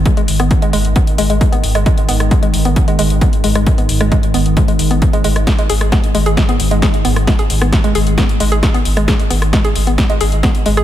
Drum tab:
HH |xxoxxxoxxxoxxxox|xxoxxxoxxxoxxxox|xxoxxxoxxxoxxxox|xxoxxxoxxxoxxxox|
SD |---r-----------r|---r-----------r|---r-----------r|o--ro---o---o--r|
BD |o---o---o---o---|o---o---o---o---|o---o---o---o---|o---o---o---o---|

HH |xxoxxxoxxxoxxxox|xxoxxxoxxxoxxxox|
SD |o--ro---o---o--r|o--ro---o---o--r|
BD |o---o---o---o---|o---o---o---o---|